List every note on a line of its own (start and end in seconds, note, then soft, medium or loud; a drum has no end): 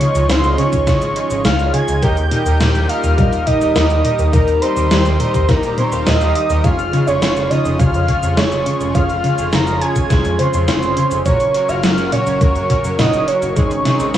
0.00 0.27 C#3 medium
0.00 1.99 F3 medium
0.00 1.99 G#3 medium
0.00 0.12 C#4 medium
0.00 2.00 D#4 medium
0.00 0.12 F4 medium
0.00 0.12 G#4 medium
0.00 0.25 C#5 loud
0.00 0.12 C#5 medium
0.00 0.25 C#6 loud
0.00 closed hi-hat medium
0.15 0.26 C#2 medium
0.15 0.26 C#4 medium
0.15 0.26 F4 medium
0.15 0.26 G#4 medium
0.15 0.26 C#5 medium
0.15 closed hi-hat soft
0.15 shaker medium
0.29 0.40 C#2 loud
0.29 0.55 C#4 medium
0.29 0.47 C#4 medium
0.29 0.55 F4 medium
0.29 0.55 G#4 medium
0.29 0.60 C5 loud
0.29 0.55 F5 medium
0.29 0.60 C6 loud
0.29 snare loud
0.29 closed hi-hat medium
0.29 shaker medium
0.44 0.55 C#2 medium
0.44 closed hi-hat soft
0.44 shaker soft
0.58 0.76 C#3 medium
0.58 0.84 C#4 loud
0.58 0.84 F4 medium
0.58 0.84 G#4 medium
0.58 1.44 C#5 loud
0.58 0.84 C#5 loud
0.58 1.44 C#6 loud
0.58 closed hi-hat loud
0.73 0.84 C#2 medium
0.73 kick medium
0.73 closed hi-hat soft
0.73 shaker medium
0.87 0.98 G#1 loud
0.87 1.05 C#3 loud
0.87 1.13 C#4 medium
0.87 1.13 F4 medium
0.87 1.13 G#4 medium
0.87 1.13 C#5 medium
0.87 kick loud
0.87 snare medium
0.87 closed hi-hat medium
0.87 shaker soft
1.02 1.13 G#1 medium
1.02 closed hi-hat soft
1.02 shaker soft
1.16 1.27 C#4 medium
1.16 1.27 F4 medium
1.16 1.27 G#4 medium
1.16 1.27 C#5 medium
1.16 closed hi-hat medium
1.30 1.41 G#1 medium
1.30 1.41 C#4 medium
1.30 1.41 F4 medium
1.30 1.41 G#4 medium
1.30 1.41 C#5 medium
1.30 closed hi-hat soft
1.30 shaker medium
1.45 1.56 C#2 loud
1.45 1.55 G#3 loud
1.45 1.70 C#4 medium
1.45 1.70 F4 medium
1.45 1.70 G#4 medium
1.45 1.70 C#5 loud
1.45 1.72 F5 loud
1.45 1.72 F6 loud
1.45 snare loud
1.45 closed hi-hat medium
1.45 shaker soft
1.59 1.70 C#2 medium
1.59 closed hi-hat soft
1.59 shaker soft
1.73 2.00 C#3 medium
1.73 1.99 C#4 medium
1.73 1.99 F4 medium
1.73 1.99 G#4 medium
1.73 1.99 C#5 medium
1.73 2.04 G#5 loud
1.73 2.04 G#6 loud
1.73 closed hi-hat loud
1.88 1.99 C#2 medium
1.88 closed hi-hat soft
1.88 shaker medium
2.02 2.14 D#2 loud
2.02 6.60 D#3 medium
2.02 6.60 G3 medium
2.02 4.31 A#3 medium
2.02 2.20 A#3 medium
2.02 2.19 D#4 medium
2.02 2.19 G4 medium
2.02 2.19 A#4 medium
2.02 2.19 D#5 loud
2.02 2.90 G5 loud
2.02 2.90 G6 loud
2.02 kick loud
2.02 closed hi-hat medium
2.02 shaker soft
2.17 2.28 D#2 medium
2.17 closed hi-hat soft
2.17 shaker soft
2.31 2.49 A#2 medium
2.31 2.42 D#4 medium
2.31 2.42 G4 medium
2.31 2.42 A#4 medium
2.31 2.42 D#5 medium
2.31 closed hi-hat medium
2.46 2.57 D#2 medium
2.46 2.57 D#4 medium
2.46 2.57 G4 medium
2.46 2.57 A#4 medium
2.46 2.57 D#5 loud
2.46 closed hi-hat soft
2.46 shaker medium
2.60 2.71 D#2 loud
2.60 2.78 A#2 loud
2.60 2.86 D#4 medium
2.60 2.86 G4 medium
2.60 2.86 A#4 medium
2.60 2.86 G5 loud
2.60 snare loud
2.60 closed hi-hat medium
2.60 shaker soft
2.75 2.86 D#2 medium
2.75 closed hi-hat soft
2.75 shaker soft
2.88 3.15 D#4 loud
2.88 3.15 G4 loud
2.88 3.15 A#4 medium
2.88 3.15 D#5 loud
2.88 3.48 F5 loud
2.88 3.48 F6 loud
2.88 closed hi-hat loud
3.03 3.14 D#2 medium
3.03 closed hi-hat soft
3.03 shaker medium
3.18 3.29 A#1 loud
3.18 3.28 G3 loud
3.18 3.43 D#4 medium
3.18 3.43 G4 medium
3.18 3.43 A#4 medium
3.18 3.43 D#5 medium
3.18 kick loud
3.18 closed hi-hat medium
3.18 shaker soft
3.32 3.43 D#1 medium
3.32 closed hi-hat soft
3.32 shaker soft
3.46 3.73 A#2 medium
3.46 3.58 D#4 medium
3.46 3.58 G4 medium
3.46 3.58 A#4 medium
3.46 4.33 D#5 loud
3.46 3.58 D#5 loud
3.46 4.32 D#6 loud
3.46 kick medium
3.46 closed hi-hat medium
3.61 3.72 D#1 medium
3.61 3.72 D#4 medium
3.61 3.72 G4 medium
3.61 3.72 A#4 medium
3.61 3.72 D#5 medium
3.61 closed hi-hat soft
3.61 shaker medium
3.75 3.86 D#2 loud
3.75 3.93 A#3 medium
3.75 4.01 D#4 medium
3.75 4.01 G4 medium
3.75 4.01 A#4 medium
3.75 4.01 D#5 loud
3.75 snare loud
3.75 closed hi-hat medium
3.75 shaker soft
3.90 4.01 D#2 medium
3.90 closed hi-hat soft
3.90 shaker soft
4.04 4.22 A#2 medium
4.04 4.30 D#4 medium
4.04 4.30 G4 medium
4.04 4.30 A#4 medium
4.04 4.30 D#5 medium
4.04 closed hi-hat loud
4.19 4.30 D#2 medium
4.19 closed hi-hat soft
4.19 shaker medium
4.33 4.44 D#2 loud
4.33 4.51 A#2 loud
4.33 6.62 C4 medium
4.33 4.49 D#4 loud
4.33 4.49 G4 medium
4.33 4.63 A#4 loud
4.33 4.49 A#4 medium
4.33 4.49 D#5 loud
4.33 4.63 A#5 loud
4.33 kick loud
4.33 closed hi-hat medium
4.33 shaker soft
4.47 4.59 D#2 medium
4.47 closed hi-hat soft
4.47 shaker soft
4.62 4.73 D#4 medium
4.62 4.73 G4 medium
4.62 4.73 A#4 medium
4.62 5.50 C5 loud
4.62 4.73 D#5 medium
4.62 5.50 C6 loud
4.62 closed hi-hat medium
4.76 4.87 D#2 medium
4.76 4.88 D#4 medium
4.76 4.88 G4 medium
4.76 4.88 A#4 medium
4.76 4.88 D#5 medium
4.76 closed hi-hat soft
4.76 shaker medium
4.91 5.02 D#2 loud
4.91 5.01 G3 loud
4.91 5.16 D#4 medium
4.91 5.16 G4 medium
4.91 5.16 A#4 medium
4.91 5.16 G5 loud
4.91 snare loud
4.91 closed hi-hat medium
4.91 shaker soft
5.05 5.16 D#2 medium
5.05 closed hi-hat soft
5.05 shaker soft
5.20 5.46 A#2 medium
5.20 5.45 D#4 loud
5.20 5.45 G4 medium
5.20 5.45 A#4 medium
5.20 5.45 D#5 loud
5.20 closed hi-hat medium
5.34 5.45 D#2 medium
5.34 kick medium
5.34 closed hi-hat soft
5.34 shaker medium
5.48 5.60 A#1 loud
5.48 5.66 A#3 medium
5.48 5.74 D#4 medium
5.48 5.74 G4 medium
5.48 5.79 A#4 medium
5.48 5.74 A#4 medium
5.48 5.74 D#5 medium
5.48 5.79 A#5 loud
5.48 kick loud
5.48 snare medium
5.48 closed hi-hat medium
5.48 shaker soft
5.63 5.74 D#1 medium
5.63 closed hi-hat soft
5.63 shaker soft
5.77 5.95 A#2 medium
5.77 5.90 D#4 medium
5.77 5.90 G4 medium
5.77 5.90 A#4 medium
5.77 6.06 C5 medium
5.77 5.90 C#5 medium
5.77 6.06 C6 medium
5.77 closed hi-hat medium
5.92 6.03 D#1 medium
5.92 6.17 D#4 medium
5.92 6.17 G4 medium
5.92 6.17 A#4 medium
5.92 6.17 F5 medium
5.92 closed hi-hat soft
5.92 shaker medium
6.06 6.17 D#2 loud
6.06 6.24 A#2 loud
6.06 6.65 D#5 loud
6.06 6.65 D#6 loud
6.06 snare loud
6.06 closed hi-hat medium
6.06 shaker soft
6.21 6.32 D#2 medium
6.21 6.37 D#4 medium
6.21 6.37 G4 medium
6.21 6.37 A#4 medium
6.21 6.37 F5 loud
6.21 closed hi-hat soft
6.21 shaker soft
6.35 closed hi-hat loud
6.50 6.61 D#2 medium
6.50 6.62 D#4 medium
6.50 6.62 G4 medium
6.50 6.62 A#4 medium
6.50 6.62 D#5 loud
6.50 closed hi-hat soft
6.50 shaker medium
6.64 6.75 F1 loud
6.64 11.22 C#3 medium
6.64 11.22 F3 medium
6.64 6.75 G#3 loud
6.64 11.22 G#3 medium
6.64 6.80 C#4 medium
6.64 6.80 F4 medium
6.64 6.80 G#4 medium
6.64 6.80 C#5 loud
6.64 7.08 F5 loud
6.64 7.09 F6 loud
6.64 kick loud
6.64 closed hi-hat medium
6.64 shaker soft
6.78 6.89 F1 medium
6.78 closed hi-hat soft
6.78 shaker soft
6.93 7.19 C#3 medium
6.93 7.04 C#4 medium
6.93 7.04 F4 medium
6.93 7.04 G#4 medium
6.93 7.04 C#5 medium
6.93 closed hi-hat medium
7.07 7.18 F1 medium
7.07 7.18 C#4 medium
7.07 7.18 F4 medium
7.07 7.18 G#4 medium
7.07 7.51 C#5 loud
7.07 7.18 C#5 medium
7.07 7.52 C#6 medium
7.07 closed hi-hat soft
7.07 shaker medium
7.22 7.33 F1 loud
7.22 7.47 C#4 medium
7.22 7.39 C#4 medium
7.22 7.47 F4 medium
7.22 7.47 G#4 medium
7.22 7.47 F5 loud
7.22 snare loud
7.22 closed hi-hat medium
7.22 shaker soft
7.36 7.47 F1 medium
7.36 closed hi-hat soft
7.36 shaker soft
7.50 7.68 C#3 medium
7.50 7.76 C#4 loud
7.50 7.76 F4 medium
7.50 7.76 G#4 medium
7.50 7.76 C#5 loud
7.50 7.78 D#5 medium
7.50 7.79 D#6 medium
7.50 closed hi-hat medium
7.65 7.76 F1 medium
7.65 closed hi-hat soft
7.65 shaker medium
7.79 7.91 C2 loud
7.79 7.97 C#3 loud
7.79 8.05 C#4 medium
7.79 8.05 F4 medium
7.79 8.05 G#4 medium
7.79 8.05 C#5 medium
7.79 8.39 F5 loud
7.79 8.38 F6 loud
7.79 kick loud
7.79 closed hi-hat medium
7.79 shaker soft
7.94 8.05 F2 medium
7.94 closed hi-hat soft
7.94 shaker soft
8.08 8.19 C#4 medium
8.08 8.19 F4 medium
8.08 8.19 G#4 medium
8.08 8.19 C#5 medium
8.08 kick medium
8.08 closed hi-hat medium
8.23 8.34 F2 medium
8.23 8.34 C#4 medium
8.23 8.34 F4 medium
8.23 8.34 G#4 medium
8.23 8.34 C#5 medium
8.23 closed hi-hat soft
8.23 shaker medium
8.37 8.48 F1 loud
8.37 8.48 G#3 loud
8.37 8.63 C#4 medium
8.37 8.63 F4 medium
8.37 8.63 G#4 medium
8.37 8.63 C#5 loud
8.37 8.94 C#5 loud
8.37 8.94 C#6 loud
8.37 snare loud
8.37 closed hi-hat medium
8.37 shaker soft
8.52 8.63 F1 medium
8.52 closed hi-hat soft
8.52 shaker soft
8.66 8.92 C#3 medium
8.66 8.91 C#4 medium
8.66 8.91 F4 medium
8.66 8.91 G#4 medium
8.66 8.91 C#5 medium
8.66 closed hi-hat medium
8.81 8.91 F1 medium
8.81 closed hi-hat soft
8.81 shaker medium
8.94 9.06 F1 loud
8.94 9.11 C#4 loud
8.94 9.12 C#4 medium
8.94 9.11 F4 medium
8.94 9.11 G#4 medium
8.94 9.11 C#5 loud
8.94 9.54 F5 loud
8.94 9.54 F6 loud
8.94 kick loud
8.94 closed hi-hat medium
8.94 shaker medium
9.09 9.20 F1 medium
9.09 closed hi-hat soft
9.09 shaker soft
9.24 9.41 C#3 medium
9.24 9.35 C#4 medium
9.24 9.35 F4 medium
9.24 9.35 G#4 medium
9.24 9.35 C#5 medium
9.24 closed hi-hat medium
9.38 9.49 F1 medium
9.38 9.49 C#4 medium
9.38 9.49 F4 medium
9.38 9.49 G#4 medium
9.38 9.49 C#5 medium
9.38 closed hi-hat soft
9.38 shaker medium
9.52 9.64 F1 loud
9.52 9.70 C#3 loud
9.52 9.78 C#4 medium
9.52 9.78 F4 medium
9.52 9.78 G#4 medium
9.52 9.78 F5 loud
9.52 9.83 A#5 loud
9.52 9.83 A#6 loud
9.52 snare loud
9.52 closed hi-hat medium
9.52 shaker soft
9.67 9.78 F1 medium
9.67 closed hi-hat soft
9.67 shaker soft
9.81 10.07 C#4 loud
9.81 10.07 F4 medium
9.81 10.07 G#4 medium
9.81 10.07 C#5 loud
9.81 10.38 G#5 loud
9.81 10.38 G#6 loud
9.81 closed hi-hat medium
9.96 10.07 F1 medium
9.96 kick medium
9.96 closed hi-hat soft
9.96 shaker medium
10.10 10.21 C2 loud
10.10 10.21 G#3 loud
10.10 10.36 C#4 medium
10.10 10.36 F4 medium
10.10 10.36 G#4 medium
10.10 10.36 C#5 medium
10.10 kick loud
10.10 snare medium
10.10 closed hi-hat medium
10.10 shaker soft
10.25 10.36 F2 medium
10.25 closed hi-hat soft
10.25 shaker soft
10.39 10.65 C#3 medium
10.39 10.50 C#4 medium
10.39 10.50 F4 medium
10.39 10.50 G#4 medium
10.39 11.22 C5 loud
10.39 10.50 C#5 medium
10.39 11.22 C6 loud
10.39 closed hi-hat medium
10.54 10.65 F2 medium
10.54 10.65 C#4 medium
10.54 10.65 F4 medium
10.54 10.65 G#4 medium
10.54 10.65 C#5 medium
10.54 closed hi-hat soft
10.54 shaker medium
10.68 10.79 F1 loud
10.68 10.85 C#4 medium
10.68 10.93 C#4 medium
10.68 10.93 F4 medium
10.68 10.93 G#4 medium
10.68 10.93 C#5 loud
10.68 snare loud
10.68 closed hi-hat medium
10.68 shaker soft
10.83 10.94 F1 medium
10.83 closed hi-hat soft
10.83 shaker soft
10.97 11.14 C#3 medium
10.97 11.22 C#4 medium
10.97 11.22 F4 medium
10.97 11.22 G#4 medium
10.97 11.22 C#5 medium
10.97 closed hi-hat loud
11.11 11.22 F1 medium
11.11 closed hi-hat soft
11.11 shaker medium
11.25 11.37 F#1 loud
11.25 11.43 A#2 loud
11.25 13.54 C#3 medium
11.25 13.54 F#3 medium
11.25 13.54 A#3 medium
11.25 11.42 C#4 medium
11.25 11.42 F#4 medium
11.25 11.42 A#4 medium
11.25 11.70 C#5 loud
11.25 11.42 C#5 loud
11.25 11.70 C#6 loud
11.25 kick loud
11.25 closed hi-hat medium
11.25 shaker medium
11.40 11.51 F#1 medium
11.40 closed hi-hat soft
11.40 shaker soft
11.54 11.66 C#4 medium
11.54 11.66 F#4 medium
11.54 11.66 A#4 medium
11.54 11.66 C#5 medium
11.54 closed hi-hat medium
11.68 11.80 F#1 medium
11.68 11.80 C#4 medium
11.68 11.80 F#4 medium
11.68 11.80 A#4 medium
11.68 11.80 C#5 medium
11.68 12.14 F5 loud
11.68 12.13 F6 loud
11.68 closed hi-hat soft
11.68 shaker medium
11.83 11.94 F#1 loud
11.83 11.94 F#3 loud
11.83 12.09 C#4 medium
11.83 12.09 F#4 medium
11.83 12.09 A#4 medium
11.83 12.09 F#5 loud
11.83 snare loud
11.83 closed hi-hat medium
11.83 shaker medium
11.98 12.09 F#1 medium
11.98 closed hi-hat soft
11.98 shaker soft
12.12 12.38 A#2 medium
12.12 12.38 C#4 loud
12.12 12.38 F#4 medium
12.12 12.38 A#4 medium
12.12 12.98 C#5 loud
12.12 12.38 C#5 loud
12.12 12.98 C#6 loud
12.12 closed hi-hat medium
12.27 12.38 F#1 medium
12.27 closed hi-hat soft
12.27 shaker medium
12.41 12.52 C#2 loud
12.41 12.58 A#3 medium
12.41 12.67 C#4 medium
12.41 12.67 F#4 medium
12.41 12.67 A#4 medium
12.41 12.67 C#5 medium
12.41 kick loud
12.41 closed hi-hat medium
12.41 shaker soft
12.56 12.67 F#2 medium
12.56 closed hi-hat soft
12.56 shaker soft
12.70 12.87 A#2 medium
12.70 12.81 C#4 medium
12.70 12.81 F#4 medium
12.70 12.81 A#4 medium
12.70 12.81 C#5 medium
12.70 kick medium
12.70 closed hi-hat medium
12.84 12.95 F#2 medium
12.84 12.95 C#4 medium
12.84 12.95 F#4 medium
12.84 12.95 A#4 medium
12.84 12.95 C#5 medium
12.84 closed hi-hat soft
12.84 shaker medium
12.99 13.10 F#1 loud
12.99 13.16 A#2 loud
12.99 13.24 C#4 medium
12.99 13.24 F#4 medium
12.99 13.24 A#4 medium
12.99 13.24 C#5 loud
12.99 13.29 D#5 loud
12.99 13.29 D#6 loud
12.99 snare loud
12.99 closed hi-hat medium
12.99 shaker medium
13.13 13.24 F#1 medium
13.13 closed hi-hat soft
13.13 shaker soft
13.27 13.53 C#4 medium
13.27 13.53 F#4 medium
13.27 13.53 A#4 medium
13.27 14.18 C#5 loud
13.27 13.53 C#5 medium
13.27 14.18 C#6 loud
13.27 closed hi-hat medium
13.42 13.53 F#1 medium
13.42 closed hi-hat soft
13.42 shaker medium
13.56 13.67 G#1 loud
13.56 14.18 C3 medium
13.56 14.18 D#3 medium
13.56 13.67 G#3 loud
13.56 14.18 G#3 medium
13.56 13.72 G#3 loud
13.56 13.72 C4 medium
13.56 13.72 D#4 medium
13.56 13.72 G#4 loud
13.56 kick loud
13.56 closed hi-hat medium
13.56 shaker medium
13.71 13.82 G#1 medium
13.71 closed hi-hat soft
13.71 shaker soft
13.85 14.11 C3 medium
13.85 13.96 G#3 medium
13.85 13.96 C4 medium
13.85 13.96 D#4 medium
13.85 13.96 G#4 medium
13.85 snare medium
13.85 closed hi-hat medium
14.00 14.11 G#1 medium
14.00 14.11 G#3 medium
14.00 14.11 C4 medium
14.00 14.11 D#4 medium
14.00 14.11 G#4 medium
14.00 closed hi-hat soft
14.00 shaker medium
14.14 14.18 G#1 loud
14.14 14.18 G#3 medium
14.14 14.18 C4 medium
14.14 14.18 D#4 medium
14.14 14.18 C5 medium
14.14 snare loud
14.14 closed hi-hat medium
14.14 shaker medium